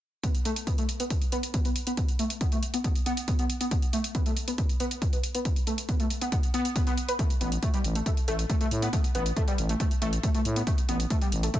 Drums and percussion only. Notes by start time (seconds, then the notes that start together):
0.24 kick, closed hi-hat
0.35 closed hi-hat
0.45 closed hi-hat
0.56 closed hi-hat
0.67 kick, closed hi-hat
0.78 closed hi-hat
0.89 closed hi-hat
1.00 closed hi-hat
1.10 kick, closed hi-hat
1.22 closed hi-hat
1.32 closed hi-hat
1.43 closed hi-hat
1.54 kick, closed hi-hat
1.65 closed hi-hat
1.76 closed hi-hat
1.87 closed hi-hat
1.97 kick, closed hi-hat
2.08 closed hi-hat
2.19 closed hi-hat
2.30 closed hi-hat
2.41 kick, closed hi-hat
2.52 closed hi-hat
2.63 closed hi-hat
2.74 closed hi-hat
2.84 kick, closed hi-hat
2.95 closed hi-hat
3.06 closed hi-hat
3.17 closed hi-hat
3.28 kick, closed hi-hat
3.39 closed hi-hat
3.50 closed hi-hat
3.61 closed hi-hat
3.71 kick, closed hi-hat
3.82 closed hi-hat
3.93 closed hi-hat
4.04 closed hi-hat
4.15 kick, closed hi-hat
4.26 closed hi-hat
4.37 closed hi-hat
4.48 closed hi-hat
4.58 kick, closed hi-hat
4.69 closed hi-hat
4.80 closed hi-hat
4.91 closed hi-hat
5.02 kick, closed hi-hat
5.13 closed hi-hat
5.23 closed hi-hat
5.35 closed hi-hat
5.45 kick, closed hi-hat
5.56 closed hi-hat
5.67 closed hi-hat
5.78 closed hi-hat
5.89 kick, closed hi-hat
6.00 closed hi-hat
6.10 closed hi-hat
6.21 closed hi-hat
6.32 kick, closed hi-hat
6.43 closed hi-hat
6.54 closed hi-hat
6.65 closed hi-hat
6.76 kick, closed hi-hat
6.87 closed hi-hat
6.97 closed hi-hat
7.09 closed hi-hat
7.19 kick, closed hi-hat
7.30 closed hi-hat
7.41 closed hi-hat
7.52 closed hi-hat
7.63 kick, closed hi-hat
7.74 closed hi-hat
7.84 closed hi-hat
7.95 closed hi-hat
8.06 kick, closed hi-hat
8.17 closed hi-hat
8.28 closed hi-hat
8.39 closed hi-hat
8.50 kick, closed hi-hat
8.61 closed hi-hat
8.71 closed hi-hat
8.82 closed hi-hat
8.93 kick, closed hi-hat
9.04 closed hi-hat
9.15 closed hi-hat
9.26 closed hi-hat
9.37 kick, closed hi-hat
9.48 closed hi-hat
9.58 closed hi-hat
9.69 closed hi-hat
9.80 kick, closed hi-hat
9.91 closed hi-hat
10.02 closed hi-hat
10.13 closed hi-hat
10.23 kick, closed hi-hat
10.35 closed hi-hat
10.45 closed hi-hat
10.56 closed hi-hat
10.67 kick, closed hi-hat
10.78 closed hi-hat
10.89 closed hi-hat
11.00 closed hi-hat
11.10 kick, closed hi-hat
11.21 closed hi-hat
11.32 closed hi-hat
11.43 closed hi-hat
11.54 kick, closed hi-hat